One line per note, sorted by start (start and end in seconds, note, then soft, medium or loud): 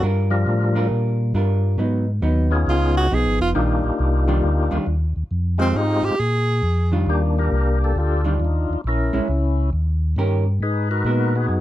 0.03 0.45 G2 medium
0.03 0.29 G3 medium
0.03 0.29 D4 medium
0.03 0.29 F4 medium
0.03 0.29 A#4 medium
0.30 0.87 F3 medium
0.30 0.87 G3 medium
0.30 0.87 D4 medium
0.30 0.88 F4 medium
0.30 0.88 A#4 medium
0.47 0.90 A2 loud
0.75 1.32 G3 medium
0.75 1.32 D4 medium
0.75 1.32 F4 medium
0.75 1.32 A#4 medium
0.90 1.33 A#2 medium
1.34 1.77 G2 medium
1.34 1.78 G3 medium
1.34 1.79 D4 medium
1.34 1.79 F4 medium
1.34 1.79 A#4 medium
1.78 2.21 G#2 medium
1.78 2.04 F#3 medium
1.78 2.05 B3 medium
1.78 2.05 D#4 medium
2.22 2.65 D#2 loud
2.22 2.48 F#3 medium
2.22 2.49 B3 medium
2.22 2.49 D#4 medium
2.51 3.07 B3 medium
2.51 3.08 C#4 medium
2.51 3.08 D#4 medium
2.51 3.08 F4 medium
2.51 3.08 G#4 medium
2.67 3.10 C#2 medium
2.67 2.95 F4 medium
2.97 3.15 F#4 loud
3.10 3.25 B1 loud
3.10 3.55 F3 medium
3.10 3.55 B3 medium
3.10 3.55 D#4 medium
3.10 3.41 G#4 loud
3.25 3.40 G#1 medium
3.40 3.54 F1 medium
3.40 3.50 F4 loud
3.55 3.82 A#1 medium
3.55 3.81 D#3 medium
3.55 3.81 G3 medium
3.55 4.78 A#3 medium
3.55 3.81 D4 medium
3.55 4.78 D4 medium
3.55 4.78 D#4 medium
3.55 4.78 F4 medium
3.55 3.81 F4 medium
3.55 4.78 G4 medium
3.84 3.91 A#1 soft
3.99 4.42 C2 loud
4.27 4.41 D#3 medium
4.27 4.41 G3 medium
4.27 4.42 D4 medium
4.27 4.42 F4 medium
4.43 4.70 D2 medium
4.71 4.80 D2 soft
4.71 4.85 D#3 medium
4.71 4.85 G3 medium
4.71 4.85 D4 medium
4.71 4.86 F4 medium
4.87 5.14 D#2 medium
5.16 5.24 D#2 soft
5.31 5.74 F2 medium
5.58 5.73 D#3 medium
5.58 6.15 G#3 medium
5.58 5.73 G#3 medium
5.58 6.16 C4 medium
5.58 5.74 C4 medium
5.58 5.79 C4 loud
5.58 6.16 D#4 medium
5.58 6.16 F4 medium
5.58 6.16 G4 medium
5.75 6.02 G#2 loud
5.75 6.06 D#4 medium
6.03 6.11 G#2 soft
6.03 6.21 G4 loud
6.19 6.62 A#2 medium
6.19 6.92 G#4 medium
6.63 7.06 F2 loud
6.92 7.48 D#3 medium
6.92 7.49 G3 medium
6.92 7.49 D4 medium
6.92 7.49 F4 medium
7.06 7.50 D#2 medium
7.06 7.93 A#3 medium
7.06 7.37 D4 medium
7.06 7.22 G4 loud
7.38 7.98 D4 medium
7.38 8.22 G4 medium
7.38 7.79 A#4 loud
7.52 7.94 C2 medium
7.84 7.98 A4 medium
7.96 8.39 D2 medium
7.96 8.82 D4 medium
7.96 8.81 F4 medium
8.00 8.25 A4 loud
8.24 8.38 D#3 medium
8.24 8.38 G3 medium
8.24 8.39 D4 medium
8.24 8.39 F4 medium
8.24 8.34 G4 medium
8.40 8.67 D#2 medium
8.44 8.72 D#4 medium
8.69 8.77 D#2 soft
8.69 8.79 D#4 medium
8.84 9.11 A#1 medium
8.84 9.70 C#4 medium
8.84 9.70 E4 medium
8.89 9.28 A#4 medium
9.13 9.21 A#1 soft
9.13 9.27 G#3 medium
9.13 9.27 C#4 medium
9.13 9.27 E4 medium
9.28 9.71 C#2 medium
9.73 10.16 D#2 medium
10.16 10.60 G2 medium
10.16 10.44 D#3 medium
10.16 10.44 C#4 medium
10.16 10.44 G4 medium
10.16 10.44 A#4 medium
10.61 11.04 G#2 medium
10.61 10.90 D#4 medium
10.61 10.89 G#4 medium
10.61 11.46 B4 medium
10.91 11.34 D#4 medium
10.91 11.60 F#4 medium
10.91 11.36 A#4 medium
11.05 11.48 A#2 loud
11.05 11.32 G#3 medium
11.05 11.32 B3 medium
11.05 11.32 F#4 medium
11.05 11.32 A#4 medium
11.35 11.60 B3 medium
11.35 11.60 D#4 medium
11.35 11.60 G#4 medium
11.49 11.60 F#2 medium